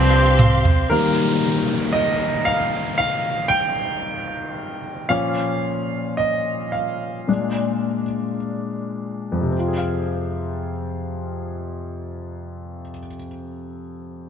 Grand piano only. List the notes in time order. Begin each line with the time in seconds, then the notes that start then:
Already playing: C4
0.90 D#3 G3 A#3 A#4
1.93 D#5
2.45 F5
2.98 F5
3.48 G5
5.09 A#2 F3 C#4 F5
6.17 D#5
6.72 F5
7.28 A#2 G#3 D4
9.32 F2
9.41 C3
9.50 C4
9.59 F4
9.68 G#4
9.77 F5